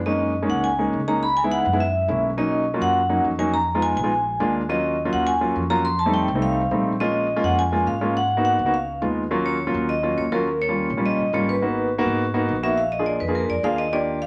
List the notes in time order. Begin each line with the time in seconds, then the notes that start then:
Already playing: F#2
0.06 G#3 A#3 C#4 D#4 D#5
0.42 G#3 A#3 C#4 D#4
0.50 C#2 F#5
0.64 G#5
0.79 G#3 A#3 C#4 D#4
0.93 C#2
1.08 G#3 A#3 C#4 D#4 A#5
1.23 B5
1.37 G#5
1.44 G#3 B3 D#4 E4
1.52 F#5
1.66 F#2
1.73 G#3 B3 D#4 E4
1.80 E5
2.08 B1 G#3 A#3 C#4 E4
2.37 F#3 A#3 C#4 D#4 D#5
2.74 F#3 A#3 C#4 F4
2.81 F#2 F#5
3.09 F#3 A#3 C#4 D#4
3.24 F2
3.39 F#3 A#3 C#4 D#4 G#5
3.54 A#5
3.75 G#3 B3 D#4 F4
3.82 G#5
3.97 A#1 G#5
4.04 G#3 B3 D#4 F4
4.40 D#2 G#3 A#3 D4 F4
4.69 F#3 A#3 C#4 F4 D#5
5.05 F#3 A#3 C#4 F4
5.13 D#2 F#5
5.27 G#5
5.41 F#3 A#3 C#4 F4
5.56 F2
5.70 F#3 A#3 C#4 F4 A#5
5.85 C6
5.99 A5
6.06 G3 A3 C4 D#4
6.14 G5
6.28 C2
6.35 G3 A3 C4 D#4
6.42 F5
6.71 A#1 G3 A3 C4 D#4
7.00 G#3 A#3 C#4 F4 D#5
7.36 G#3 A#3 C#4 F4
7.43 F2 F#5
7.59 G#5
7.72 G#3 A#3 C#4 F4
7.86 G#2 F5
8.01 G#3 A#3 C#4 F4
8.17 F#5
8.37 A#3 B3 D#4 F#4
8.45 F#5
8.59 C#2
8.66 A#3 B3 D#4 F#4
8.74 F5
9.02 D#2 G#3 B3 D#4 F4
9.31 F#3 A#3 C#4 F4
9.46 C#5
9.67 F#3 A#3 C#4 F4
9.74 D#2
9.89 D#5
10.03 F#3 A#3 C#4 F4
10.17 D#2 C#5
10.32 F#3 A#3 C#4 F4 A#4
10.62 C#5
10.69 G3 A#3 C#4 F4
10.90 A#1
10.97 G3 A#3 C#4 F4
11.06 D#5
11.18 A#1
11.33 G#1 G3 A#3 C#4 F4 C#5
11.49 B4
11.62 A#3 B3 D#4 F#4
11.98 A#3 B3 D#4 F#4
12.05 G#2
12.34 A#3 B3 D#4 F#4
12.48 A#1
12.63 A#3 B3 D#4 F#4 E5
12.78 F5
12.92 D#5
12.99 A#3 D4 F4 G#4
13.06 D5
13.20 F2 B4
13.28 A#3 D4 F4 G#4
13.35 A#4
13.49 F2 D5
13.63 D#2 A#3 D4 F4 G#4 F5
13.78 D#5
13.93 A#3 D4 F4 G4 D5
14.22 F5